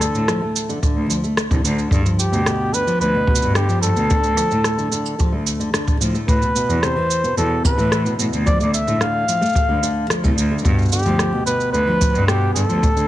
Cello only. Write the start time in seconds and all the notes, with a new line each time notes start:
0.14 A2
0.96 D2
1.51 C2
1.64 D2
1.91 G2
2.32 D2
3.01 D2
3.42 G2
3.83 G2
3.96 D2
4.23 D2
4.51 A2
5.33 D2
6.01 A2
6.28 A2
6.69 E2
7.37 E2
7.78 A2
8.19 A2
8.33 D2
8.60 D2
8.87 A2
9.69 D2
10.25 C2
10.37 D2
10.65 G2
11.05 D2
11.73 D2
12.14 G2
12.55 G2
12.69 D2
12.96 D2